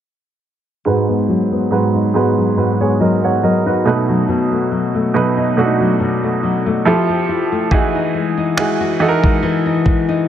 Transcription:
0.85 G#2 G#3 F#4 B4
1.09 B3
1.29 F#3
1.51 B3
1.71 G#2 F#3 G#3 F#4 B4
1.94 D#4
2.14 G#2 G#3 B3 F#4 B4
2.37 F#3
2.57 G#2 F#4 B4
2.80 B3 G#4 C#5
3.00 F#3 A#4 D#5
3.23 B3 C#5 F#5
3.43 F#3 A#4 D#5
3.66 D#4 F#4 B4
3.85 B2 A3 D#4 B4
4.09 F#3
4.28 B2
4.52 A3
4.71 F#3
4.94 A3
5.14 B2 F#3 A3 D#4 B4
5.37 D#4
5.57 B2 A3 D4 F#4
5.65 D#4
5.80 F#3
6.00 B2
6.23 A3
6.43 F#3
6.66 A3
6.85 F3 E4 G4 A4
7.09 G4
7.29 E4
7.52 A3
7.71 E3 D#4 F#4 G#4, kick
7.95 D#4
8.14 G#3
8.38 D#4
8.57 E3 G#3 D#4 F#4 G#4, finger snap
8.80 F#4
9.00 E3 D#4 F#4 A4
9.08 A#4
9.23 G#3, kick
9.43 E3
9.66 D#4
9.86 G#3, kick
10.09 D#4

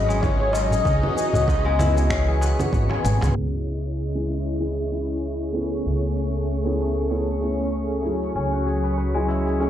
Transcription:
Already playing: G#1 F#3 C#4 E4 F#4 G#4 B4 C#5 D#5
0.09 G#3, shaker
0.21 E4 C#5, kick, low conga, shaker
0.40 G#4
0.52 C#4 D#5, darbuka tek, shaker
0.71 G#4, darbuka dum, shaker
0.85 C#2 E3 B3 C#4 F#4, kick, shaker
1.03 F#4, low conga
1.17 G#4, shaker
1.33 C#2 B4, darbuka dum, shaker
1.48 B4, kick, darbuka tek, shaker
1.65 G#3, darbuka ka, darbuka tek
1.79 E4, low conga, shaker
1.97 G#4, shaker
2.10 C#4, finger snap, kick, shaker
2.28 G#4
2.41 B4, darbuka tek, shaker
2.59 B3, low conga, shaker
2.73 G#1 B3, kick, shaker
2.90 G#4, high tom, darbuka ka, darbuka tek
3.04 G#1 G#4, mid tom, shaker
3.21 C#2 G#4, mid tom, darbuka tek, shaker
3.36 C#2 C#3 C#4 E4 G#4 C#5 D#5
4.15 E3 G#3 C#4 E4 G#4
4.30 shaker
4.60 E3 G#3 C#4 E4 G#4
4.92 E3 G#3 C#4 E4 G#4, shaker
5.10 shaker
5.24 shaker
5.52 A3 B3 C#4 E4, shaker
5.56 G#4
5.72 shaker
5.86 C#2 A3 C#4, shaker
6.18 shaker
6.35 shaker
6.49 shaker
6.64 A3 B3 C#4 E4 G#4
6.80 shaker
6.98 shaker
7.09 A3 B3 C#4 E4 G#4, shaker
7.41 A3 B3 C#4 E4 G#4, shaker
7.61 shaker
7.74 shaker
8.02 F#3 A3 C#4 E4, shaker
8.06 G#4
8.23 shaker
8.35 C#2 F#3 C#4 G#4, shaker
8.53 F#4
8.66 G#4, shaker
8.84 B4, shaker
8.98 B4, shaker
9.14 F#3 G#3 C#4 E4 G#4
9.28 E4, shaker
9.46 G#4, shaker
9.59 F#3 A3 C#4 E4 G#4, shaker

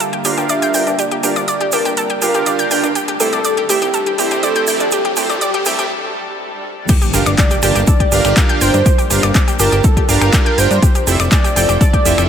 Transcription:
Already playing: D3 G3 A#3 F4 G4 F5, riser
0.00 A4, closed hi-hat, shaker
0.13 G4, closed hi-hat
0.25 G1 D4 F4 G4 A#4 F5, open hi-hat, shaker
0.38 G1 G4, closed hi-hat, shaker
0.49 D5 E5, closed hi-hat, shaker
0.62 G5, closed hi-hat, shaker
0.74 G1 D4 F4 G4 A#4 G5, open hi-hat, shaker
0.87 G1 D4, closed hi-hat, shaker
0.99 D4 G4 D5, closed hi-hat, shaker
1.11 G4, closed hi-hat
1.23 G1 D4 F4 G4 A#4 F5, open hi-hat, shaker
1.36 G1 D5, closed hi-hat, shaker
1.48 D5, closed hi-hat, shaker
1.61 G4, closed hi-hat
1.72 G1 D4 F4 G4 A#4 A5, open hi-hat, shaker
1.85 G1 G4, closed hi-hat, shaker
1.97 A4, closed hi-hat, shaker
2.10 G4, closed hi-hat
2.22 G1 D4 F4 G4 A#4 F5, open hi-hat, shaker
2.34 G1 G4, closed hi-hat, shaker
2.46 D5, closed hi-hat, shaker
2.59 G5, closed hi-hat, shaker
2.71 G1 D4 F4 G4 A#4 G5, open hi-hat, shaker
2.83 G1 D4, closed hi-hat, shaker
2.95 C3 A3 G4, closed hi-hat, shaker
3.08 G4, closed hi-hat
3.20 C2 A3 C4 E4 G4 A4 C5, open hi-hat, shaker
3.33 C2 D5, closed hi-hat, shaker
3.45 D5, closed hi-hat, shaker
3.57 G4, closed hi-hat
3.69 C2 A3 C4 E4 G4 E5, open hi-hat, shaker
3.82 C2 G4, closed hi-hat, shaker
3.94 A4, closed hi-hat, shaker
4.06 G4, closed hi-hat
4.18 C2 A3 C4 E4 G4 C5, open hi-hat, shaker
4.31 C2 G4, closed hi-hat, shaker
4.43 A4 D5, closed hi-hat, shaker
4.55 G5, closed hi-hat, shaker
4.67 C2 A3 C4 E4 G4 D5 G5, open hi-hat, shaker
4.80 C2 D4, closed hi-hat, shaker
4.91 G4 A4, closed hi-hat, shaker
5.05 G4, closed hi-hat
5.16 C2 A3 C4 E4 G4 C5, open hi-hat, shaker
5.29 C2 D5, closed hi-hat, shaker
5.41 D5, closed hi-hat, shaker
5.54 G4, closed hi-hat
5.65 C2 A3 C4 E4 G4 E5, open hi-hat, shaker
5.79 C2 G4, closed hi-hat, shaker
5.91 swell
6.88 D3 G3 A#3 D4 G4, kick, closed hi-hat, crash, impact, shaker
7.02 G4, closed hi-hat, shaker
7.14 G1 D4 F4 G4 A#4 F5, open hi-hat, shaker
7.26 G1 D5, finger snap, closed hi-hat, shaker
7.38 D5, kick, clap, closed hi-hat, shaker
7.50 G4, closed hi-hat, shaker
7.62 G1 D4 F4 G4 A#4 A5, finger snap, open hi-hat, shaker
7.75 G1 G4, closed hi-hat, shaker
7.87 A4 D5, kick, closed hi-hat, shaker
8.00 G4, kick, closed hi-hat
8.12 G1 D4 F4 G4 A#4 F5, open hi-hat, shaker
8.25 G1 G4, finger snap, closed hi-hat, shaker
8.37 D5, kick, clap, closed hi-hat, shaker
8.49 G5, closed hi-hat
8.61 G1 D4 F4 G4 A#4 C5 G5, open hi-hat, shaker
8.74 G2 D4, closed hi-hat, shaker
8.86 G4, kick, closed hi-hat, shaker
8.98 G4, closed hi-hat, shaker
9.10 G1 D4 F4 G4 A#4 F5, open hi-hat, shaker
9.22 G1 D5, finger snap, closed hi-hat, shaker
9.35 D5, kick, clap, closed hi-hat, shaker
9.48 G4, closed hi-hat, shaker
9.59 G1 D4 F4 G4 A#4 A5, open hi-hat, shaker
9.72 G1 G4, closed hi-hat, shaker
9.84 A4, kick, closed hi-hat, shaker
9.97 G4, kick, closed hi-hat
10.09 G1 D4 F4 G4 A#4 F5, open hi-hat, shaker
10.21 G1 G4, finger snap, closed hi-hat, shaker
10.33 D5, kick, clap, closed hi-hat, shaker
10.46 G5, closed hi-hat
10.58 G1 D4 F4 G4 A#4 C5 G5, open hi-hat, shaker
10.71 G2 D4, closed hi-hat, shaker
10.82 C3 F3 A3 G4 E5, kick, closed hi-hat, shaker
10.95 G4, closed hi-hat, shaker
11.07 F1 C4 E4 F4 G4 A4 E5, open hi-hat, shaker
11.20 F1 D5, finger snap, closed hi-hat, shaker
11.31 D5, kick, clap, closed hi-hat, shaker
11.44 G4, closed hi-hat, shaker
11.56 F1 C4 E4 F4 G4 A4 G5, open hi-hat, shaker
11.69 F1 G4, closed hi-hat, shaker
11.81 A4 D5, kick, closed hi-hat, shaker
11.93 G4, kick, closed hi-hat
12.05 F1 C4 E4 F4 G4 A4 E5, open hi-hat, shaker
12.18 F1 G4, finger snap, closed hi-hat, shaker

